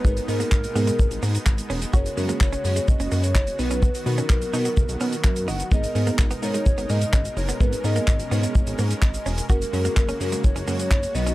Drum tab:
HH |-xox-xox-xox-xox|-xox-xox-xox-xox|-xox-xox-xox-xox|-xox-xox-xox-xox|
SH |xxxxxxxxxxxxxxxx|xxxxxxxxxxxxxxxx|xxxxxxxxxxxxxxxx|xxxxxxxxxxxxxxxx|
CP |----x-------x---|----x-------x---|----x-------x---|----x-------x---|
BD |o---o---o---o---|o---o---o---o---|o---o---o---o---|o---o---o---o---|

HH |-xox-xox-xox-xox|-xox-xox-xox-xox|
SH |xxxxxxxxxxxxxxxx|xxxxxxxxxxxxxxxx|
CP |----x-------x---|----x-------x---|
BD |o---o---o---o---|o---o---o---o---|